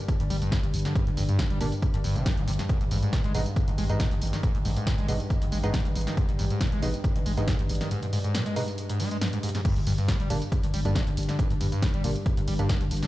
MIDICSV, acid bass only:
0, 0, Header, 1, 2, 480
1, 0, Start_track
1, 0, Tempo, 434783
1, 1053, Time_signature, 4, 2, 24, 8
1, 14431, End_track
2, 0, Start_track
2, 0, Title_t, "Acid bass"
2, 0, Program_c, 0, 38
2, 221, Note_on_c, 0, 43, 82
2, 258, Note_off_c, 0, 43, 0
2, 334, Note_on_c, 0, 55, 81
2, 404, Note_off_c, 0, 55, 0
2, 461, Note_on_c, 0, 43, 104
2, 574, Note_on_c, 0, 45, 101
2, 590, Note_off_c, 0, 43, 0
2, 678, Note_off_c, 0, 45, 0
2, 700, Note_on_c, 0, 43, 79
2, 738, Note_off_c, 0, 43, 0
2, 940, Note_on_c, 0, 50, 76
2, 1034, Note_off_c, 0, 50, 0
2, 1053, Note_on_c, 0, 43, 109
2, 1158, Note_off_c, 0, 43, 0
2, 1180, Note_on_c, 0, 43, 79
2, 1218, Note_off_c, 0, 43, 0
2, 1294, Note_on_c, 0, 43, 77
2, 1363, Note_off_c, 0, 43, 0
2, 1421, Note_on_c, 0, 43, 107
2, 1534, Note_on_c, 0, 45, 98
2, 1551, Note_off_c, 0, 43, 0
2, 1638, Note_off_c, 0, 45, 0
2, 1660, Note_on_c, 0, 55, 103
2, 1754, Note_off_c, 0, 55, 0
2, 1774, Note_on_c, 0, 46, 100
2, 1843, Note_off_c, 0, 46, 0
2, 2141, Note_on_c, 0, 43, 80
2, 2178, Note_off_c, 0, 43, 0
2, 2254, Note_on_c, 0, 43, 104
2, 2381, Note_on_c, 0, 48, 79
2, 2397, Note_off_c, 0, 43, 0
2, 2494, Note_on_c, 0, 43, 83
2, 2511, Note_off_c, 0, 48, 0
2, 2621, Note_on_c, 0, 55, 77
2, 2637, Note_off_c, 0, 43, 0
2, 2683, Note_off_c, 0, 55, 0
2, 2734, Note_on_c, 0, 48, 77
2, 2776, Note_off_c, 0, 48, 0
2, 2861, Note_on_c, 0, 43, 101
2, 2898, Note_off_c, 0, 43, 0
2, 2974, Note_on_c, 0, 44, 110
2, 3078, Note_off_c, 0, 44, 0
2, 3100, Note_on_c, 0, 44, 77
2, 3138, Note_off_c, 0, 44, 0
2, 3213, Note_on_c, 0, 44, 82
2, 3283, Note_off_c, 0, 44, 0
2, 3341, Note_on_c, 0, 44, 106
2, 3453, Note_on_c, 0, 46, 100
2, 3470, Note_off_c, 0, 44, 0
2, 3558, Note_off_c, 0, 46, 0
2, 3581, Note_on_c, 0, 56, 105
2, 3674, Note_off_c, 0, 56, 0
2, 3694, Note_on_c, 0, 47, 99
2, 3764, Note_off_c, 0, 47, 0
2, 4061, Note_on_c, 0, 44, 78
2, 4098, Note_off_c, 0, 44, 0
2, 4173, Note_on_c, 0, 56, 81
2, 4243, Note_off_c, 0, 56, 0
2, 4300, Note_on_c, 0, 44, 106
2, 4414, Note_on_c, 0, 46, 98
2, 4430, Note_off_c, 0, 44, 0
2, 4518, Note_off_c, 0, 46, 0
2, 4540, Note_on_c, 0, 44, 77
2, 4578, Note_off_c, 0, 44, 0
2, 4780, Note_on_c, 0, 51, 75
2, 4873, Note_off_c, 0, 51, 0
2, 4893, Note_on_c, 0, 44, 111
2, 4998, Note_off_c, 0, 44, 0
2, 5020, Note_on_c, 0, 44, 79
2, 5058, Note_off_c, 0, 44, 0
2, 5133, Note_on_c, 0, 44, 84
2, 5203, Note_off_c, 0, 44, 0
2, 5261, Note_on_c, 0, 44, 105
2, 5374, Note_on_c, 0, 46, 96
2, 5390, Note_off_c, 0, 44, 0
2, 5478, Note_off_c, 0, 46, 0
2, 5500, Note_on_c, 0, 56, 108
2, 5594, Note_off_c, 0, 56, 0
2, 5614, Note_on_c, 0, 47, 100
2, 5684, Note_off_c, 0, 47, 0
2, 5981, Note_on_c, 0, 44, 84
2, 6018, Note_off_c, 0, 44, 0
2, 6095, Note_on_c, 0, 56, 76
2, 6164, Note_off_c, 0, 56, 0
2, 6222, Note_on_c, 0, 44, 105
2, 6335, Note_on_c, 0, 46, 99
2, 6351, Note_off_c, 0, 44, 0
2, 6439, Note_off_c, 0, 46, 0
2, 6462, Note_on_c, 0, 44, 80
2, 6498, Note_off_c, 0, 44, 0
2, 6701, Note_on_c, 0, 51, 79
2, 6794, Note_off_c, 0, 51, 0
2, 6815, Note_on_c, 0, 44, 108
2, 6919, Note_off_c, 0, 44, 0
2, 6942, Note_on_c, 0, 44, 75
2, 6978, Note_off_c, 0, 44, 0
2, 7055, Note_on_c, 0, 44, 81
2, 7124, Note_off_c, 0, 44, 0
2, 7181, Note_on_c, 0, 44, 110
2, 7295, Note_on_c, 0, 46, 102
2, 7311, Note_off_c, 0, 44, 0
2, 7399, Note_off_c, 0, 46, 0
2, 7421, Note_on_c, 0, 56, 104
2, 7514, Note_off_c, 0, 56, 0
2, 7534, Note_on_c, 0, 47, 101
2, 7604, Note_off_c, 0, 47, 0
2, 7901, Note_on_c, 0, 44, 79
2, 7938, Note_off_c, 0, 44, 0
2, 8014, Note_on_c, 0, 56, 78
2, 8084, Note_off_c, 0, 56, 0
2, 8141, Note_on_c, 0, 44, 105
2, 8254, Note_on_c, 0, 46, 100
2, 8270, Note_off_c, 0, 44, 0
2, 8358, Note_off_c, 0, 46, 0
2, 8381, Note_on_c, 0, 44, 79
2, 8418, Note_off_c, 0, 44, 0
2, 8620, Note_on_c, 0, 51, 78
2, 8714, Note_off_c, 0, 51, 0
2, 8733, Note_on_c, 0, 44, 109
2, 8838, Note_off_c, 0, 44, 0
2, 8859, Note_on_c, 0, 44, 83
2, 8897, Note_off_c, 0, 44, 0
2, 8973, Note_on_c, 0, 44, 79
2, 9043, Note_off_c, 0, 44, 0
2, 9100, Note_on_c, 0, 44, 103
2, 9213, Note_on_c, 0, 46, 100
2, 9229, Note_off_c, 0, 44, 0
2, 9318, Note_off_c, 0, 46, 0
2, 9340, Note_on_c, 0, 56, 107
2, 9433, Note_off_c, 0, 56, 0
2, 9453, Note_on_c, 0, 47, 100
2, 9523, Note_off_c, 0, 47, 0
2, 9820, Note_on_c, 0, 44, 82
2, 9933, Note_on_c, 0, 56, 76
2, 9950, Note_off_c, 0, 44, 0
2, 10038, Note_off_c, 0, 56, 0
2, 10060, Note_on_c, 0, 56, 102
2, 10122, Note_off_c, 0, 56, 0
2, 10173, Note_on_c, 0, 44, 84
2, 10243, Note_off_c, 0, 44, 0
2, 10301, Note_on_c, 0, 44, 109
2, 10363, Note_off_c, 0, 44, 0
2, 10414, Note_on_c, 0, 44, 108
2, 10483, Note_off_c, 0, 44, 0
2, 10541, Note_on_c, 0, 44, 77
2, 10603, Note_off_c, 0, 44, 0
2, 10653, Note_on_c, 0, 43, 110
2, 10758, Note_off_c, 0, 43, 0
2, 10780, Note_on_c, 0, 43, 80
2, 10818, Note_off_c, 0, 43, 0
2, 10893, Note_on_c, 0, 43, 84
2, 10963, Note_off_c, 0, 43, 0
2, 11020, Note_on_c, 0, 43, 101
2, 11134, Note_on_c, 0, 45, 103
2, 11150, Note_off_c, 0, 43, 0
2, 11238, Note_off_c, 0, 45, 0
2, 11260, Note_on_c, 0, 55, 105
2, 11354, Note_off_c, 0, 55, 0
2, 11374, Note_on_c, 0, 46, 99
2, 11443, Note_off_c, 0, 46, 0
2, 11741, Note_on_c, 0, 43, 82
2, 11778, Note_off_c, 0, 43, 0
2, 11854, Note_on_c, 0, 55, 78
2, 11924, Note_off_c, 0, 55, 0
2, 11981, Note_on_c, 0, 43, 105
2, 12094, Note_on_c, 0, 45, 100
2, 12111, Note_off_c, 0, 43, 0
2, 12199, Note_off_c, 0, 45, 0
2, 12221, Note_on_c, 0, 43, 81
2, 12258, Note_off_c, 0, 43, 0
2, 12461, Note_on_c, 0, 50, 76
2, 12554, Note_off_c, 0, 50, 0
2, 12575, Note_on_c, 0, 43, 108
2, 12679, Note_off_c, 0, 43, 0
2, 12701, Note_on_c, 0, 43, 81
2, 12738, Note_off_c, 0, 43, 0
2, 12814, Note_on_c, 0, 43, 83
2, 12884, Note_off_c, 0, 43, 0
2, 12941, Note_on_c, 0, 43, 102
2, 13054, Note_on_c, 0, 45, 96
2, 13070, Note_off_c, 0, 43, 0
2, 13158, Note_off_c, 0, 45, 0
2, 13181, Note_on_c, 0, 55, 101
2, 13274, Note_off_c, 0, 55, 0
2, 13294, Note_on_c, 0, 46, 106
2, 13364, Note_off_c, 0, 46, 0
2, 13661, Note_on_c, 0, 43, 82
2, 13698, Note_off_c, 0, 43, 0
2, 13774, Note_on_c, 0, 55, 80
2, 13844, Note_off_c, 0, 55, 0
2, 13901, Note_on_c, 0, 43, 103
2, 14014, Note_on_c, 0, 45, 101
2, 14031, Note_off_c, 0, 43, 0
2, 14118, Note_off_c, 0, 45, 0
2, 14141, Note_on_c, 0, 43, 81
2, 14178, Note_off_c, 0, 43, 0
2, 14381, Note_on_c, 0, 50, 75
2, 14431, Note_off_c, 0, 50, 0
2, 14431, End_track
0, 0, End_of_file